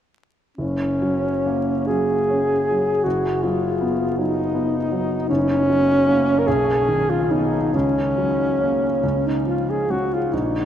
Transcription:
0.57 3.01 F#1 soft
0.57 1.88 C#4 soft
1.01 1.72 F#3 soft
1.46 2.13 A#3 soft
1.87 2.52 F#3 soft
1.87 3.05 G#4 medium
2.30 2.90 C#4 soft
2.70 3.07 F#3 soft
3.03 5.26 F#1 soft
3.03 3.44 F#4 soft
3.43 4.03 F#3 soft
3.43 4.17 F4 soft
3.81 4.39 B3 soft
4.18 4.77 F#3 soft
4.18 5.28 D#4 soft
4.54 5.15 B3 soft
4.92 5.30 F#3 soft
5.29 6.43 F#1 soft
5.29 6.40 C#4 medium
5.69 6.31 F#3 soft
6.08 6.43 A#3 soft
6.08 6.43 C#4 soft
6.39 6.48 A#4 soft
6.47 7.70 B1 soft
6.47 7.11 G#4 medium
6.88 7.57 D#3 soft
7.10 7.32 F4 soft
7.30 7.69 B3 soft
7.30 7.75 D#4 soft
7.30 7.70 D#4 soft
7.74 8.99 C#2 soft
7.74 9.28 C#4 soft
8.17 8.86 F#3 soft
8.60 8.99 A#3 soft
8.60 9.00 C#4 soft
9.03 10.29 C#2 soft
9.27 9.46 D#4 soft
9.47 10.16 F3 soft
9.47 9.71 F4 soft
9.70 9.92 G#4 soft
9.90 10.28 G#3 soft
9.90 10.28 C#4 soft
9.90 10.15 F#4 soft
10.14 10.34 F4 soft
10.33 10.65 A#1 soft
10.33 10.65 D#4 soft

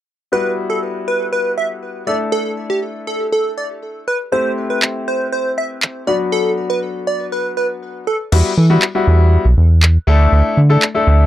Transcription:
0.32 2.04 G3 medium
0.32 2.04 B3 medium
0.32 2.04 E4 medium
0.32 2.04 F#4 medium
0.32 0.52 B4 medium
0.70 0.79 A4 medium
1.08 1.27 B4 medium
1.33 1.52 B4 medium
1.58 1.67 E5 medium
2.07 4.03 A3 medium
2.07 4.03 D4 medium
2.07 4.03 E4 medium
2.07 4.04 A4 medium
2.07 2.17 D5 medium
2.32 2.52 A4 loud
2.70 2.80 G4 medium
3.07 3.27 A4 medium
3.32 3.52 A4 medium
3.58 3.67 D5 medium
4.08 4.17 B4 medium
4.32 6.04 A3 medium
4.32 6.04 C4 medium
4.32 6.04 E4 medium
4.32 6.04 G4 medium
4.32 4.52 C5 loud
4.70 4.80 B4 medium
4.82 clap loud
5.08 5.27 C5 medium
5.32 5.52 C5 medium
5.58 5.67 E5 medium
5.82 clap loud
6.07 8.03 F#3 medium
6.07 8.03 B3 medium
6.07 8.04 D4 medium
6.07 8.04 F#4 medium
6.07 6.17 D5 medium
6.32 6.52 A4 loud
6.70 6.79 B4 medium
7.07 7.27 D5 medium
7.32 7.52 B4 medium
7.57 7.67 B4 medium
8.07 8.17 A4 medium
8.32 8.43 E2 loud
8.32 8.51 G3 medium
8.32 8.51 B3 medium
8.32 8.51 E4 medium
8.32 8.51 F#4 medium
8.32 crash medium
8.57 8.78 E3 medium
8.70 8.82 G3 medium
8.70 8.82 B3 medium
8.70 8.82 E4 medium
8.70 8.82 F#4 medium
8.82 clap loud
8.95 9.44 G3 medium
8.95 9.44 B3 medium
8.95 9.44 E4 medium
8.95 9.44 F#4 loud
9.07 9.38 E2 medium
9.45 9.55 B1 loud
9.57 9.98 E2 medium
9.82 clap loud
10.07 10.28 D2 loud
10.07 10.57 A3 medium
10.07 10.57 D4 medium
10.07 10.57 E4 medium
10.07 10.58 A4 loud
10.32 10.42 D2 loud
10.57 10.78 D3 medium
10.69 10.82 A3 medium
10.69 10.82 D4 medium
10.69 10.82 E4 medium
10.69 10.82 A4 loud
10.82 clap loud
10.95 11.26 A3 medium
10.95 11.26 D4 medium
10.95 11.26 E4 medium
10.95 11.26 A4 loud
11.07 11.26 D2 medium

